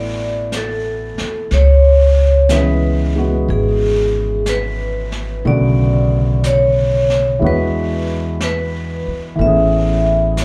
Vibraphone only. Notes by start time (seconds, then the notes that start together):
Already playing: D5
0.56 A4
1.54 C#5
2.52 B4
3.50 G#4
4.49 B4
5.47 D5
6.46 C#5
7.47 B4
8.44 B4
9.41 E5
10.41 C#5